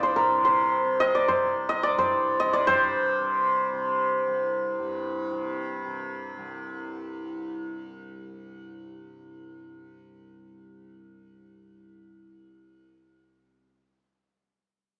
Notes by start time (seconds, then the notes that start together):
Already playing: C2 G2 C3 D5 F5
0.03 C5
0.15 A#4, tabla na
0.31 C3
0.44 C5, tabla tin
0.72 tabla na
0.84 C3
1.00 D#5, tabla na
1.14 D5, tabla te
1.28 C5, tabla na, tabla ge
1.36 C2
1.69 D#5, tabla na
1.83 D5, tabla te
1.89 G2
1.98 C5, tabla na, tabla ge
2.40 C3 D#5, tabla na
2.53 D5, tabla te
2.67 G2 C5, tabla na, tabla ge
3.19 C3
3.73 C3
4.27 C2
4.79 G2
5.32 C3
5.85 C3
6.38 C2